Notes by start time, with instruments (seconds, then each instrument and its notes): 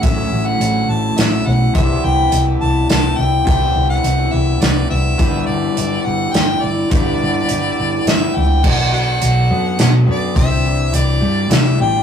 0.03 fingered electric bass A1, twelve-string acoustic guitar A2 F#3 A3 C#4 E4, harmonica E5, kick, closed hi-hat
0.32 fingered electric bass A1
0.46 harmonica F#5
0.60 fingered electric bass A1, twelve-string acoustic guitar F#3 A3 C#4 E4, closed hi-hat
0.88 fingered electric bass A1, harmonica A5
1.17 fingered electric bass A1, twelve-string acoustic guitar F#3 A3 E4, harmonica E5, snare, closed hi-hat
1.46 fingered electric bass B1, twelve-string acoustic guitar A3 C#4 E4, harmonica F#5
1.75 fingered electric bass C2, twelve-string acoustic guitar C3 E3 G3 B3 E4, harmonica E5, kick, closed hi-hat
2.04 fingered electric bass C2, harmonica G5
2.32 fingered electric bass C2, twelve-string acoustic guitar E3 G3 B3 E4, closed hi-hat
2.61 fingered electric bass C2, harmonica A5
2.89 fingered electric bass C2, twelve-string acoustic guitar E3 G3 B3 E4, harmonica A5, snare, closed hi-hat
3.18 fingered electric bass C2, twelve-string acoustic guitar G3 B3 E4, harmonica G5
3.47 fingered electric bass C2, twelve-string acoustic guitar C3 E3 G3 B3 E4, harmonica G5, kick, closed hi-hat
3.76 fingered electric bass C2
3.90 harmonica F#5
4.03 fingered electric bass C2, twelve-string acoustic guitar E3 G3 B3 E4, closed hi-hat
4.32 fingered electric bass C2, twelve-string acoustic guitar G3 B3 E4, harmonica E5
4.61 fingered electric bass C2, twelve-string acoustic guitar E3 G3 B3 E4, harmonica D5, snare, closed hi-hat
4.90 fingered electric bass C2, twelve-string acoustic guitar G3 B3 E4, harmonica E5
5.19 fingered electric bass G1, twelve-string acoustic guitar G2 D3 E3 G3 B3 E4, kick, closed hi-hat
5.46 fingered electric bass G1, harmonica D5
5.77 fingered electric bass G1, twelve-string acoustic guitar E3 G3 B3 E4, closed hi-hat
6.04 fingered electric bass G1, harmonica F#5
6.33 fingered electric bass G1, twelve-string acoustic guitar E3 G3 B3 E4, harmonica G5, snare, closed hi-hat
6.62 fingered electric bass G1, twelve-string acoustic guitar E3 G3 B3 E4, harmonica D5
6.91 fingered electric bass G1, twelve-string acoustic guitar G2 D3 E3 G3 B3 E4, kick, closed hi-hat
7.22 fingered electric bass G1
7.49 fingered electric bass G1, twelve-string acoustic guitar E3 G3 B3 E4, closed hi-hat
7.79 fingered electric bass G1
8.06 fingered electric bass G1, twelve-string acoustic guitar E3 G3 B3 E4, harmonica E5, snare, closed hi-hat
8.34 fingered electric bass C#2, twelve-string acoustic guitar E3 G3 B3 E4, harmonica G5
8.63 fingered electric bass B1, twelve-string acoustic guitar B2 F#3 B3 D4 F#4, harmonica F#5, kick, crash
8.92 clean electric guitar F#3, harmonica F#5
9.21 fingered electric bass B1, twelve-string acoustic guitar F#3 B3 D4 F#4, closed hi-hat
9.49 fingered electric bass F#2, twelve-string acoustic guitar B3 D4 F#4
9.78 fingered electric bass B2, twelve-string acoustic guitar F#3 B3 D4 F#4, harmonica F#5, snare, closed hi-hat
10.06 fingered electric bass F#2, twelve-string acoustic guitar B3 D4 F#4, harmonica D5
10.34 fingered electric bass C2, twelve-string acoustic guitar C3 E3 G3 D4 G4, harmonica E5, kick, closed hi-hat
10.64 clean electric guitar E3
10.92 fingered electric bass C2, twelve-string acoustic guitar E3 G3 D4 G4, harmonica D5, closed hi-hat
11.21 fingered electric bass G2, clean electric guitar G3
11.50 fingered electric bass C3, twelve-string acoustic guitar E3 G3 D4 G4, harmonica E5, snare, closed hi-hat
11.78 fingered electric bass A1, twelve-string acoustic guitar G3 D4 G4, harmonica G5